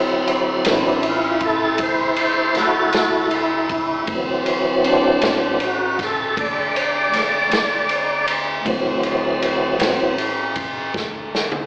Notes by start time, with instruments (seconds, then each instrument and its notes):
Already playing: upright bass D2, tonewheel organ F#3 C4 E4
0.27 ride
0.65 upright bass A1, tonewheel organ E3 F#3 C4, snare, ride
0.70 tonewheel organ D4
1.03 ride
1.08 tonewheel organ F4
1.41 kick, ride
1.45 tonewheel organ A4
1.78 upright bass D2, kick, ride
1.83 tonewheel organ C5
2.16 ride
2.55 upright bass D2, tonewheel organ F#4 A4, snare, ride
2.93 upright bass D2, snare, ride
3.31 ride
3.69 kick, ride
4.07 upright bass D2, tonewheel organ E3, kick, ride
4.12 tonewheel organ F#3 C4
4.46 ride
4.84 tonewheel organ C#4 D4, ride
5.22 upright bass A1, tonewheel organ E3, snare, ride
5.26 tonewheel organ F#3 C4
5.60 tonewheel organ F#4, ride
5.99 kick, snare, ride
6.05 tonewheel organ A4
6.37 upright bass D2, tonewheel organ D5, kick, ride
6.76 tonewheel organ C#5, ride
6.81 tonewheel organ D5
7.12 upright bass D2, snare, ride
7.50 upright bass D2, snare, ride
7.89 ride
8.27 ride
8.65 upright bass D2, tonewheel organ E3 F#3 C4, kick, ride
9.03 ride
9.42 ride
9.79 upright bass A1, tonewheel organ E3 C4, snare, ride
9.83 tonewheel organ F#3
10.18 ride
10.56 kick, ride
10.94 upright bass D2, kick, snare
11.35 snare
11.52 high tom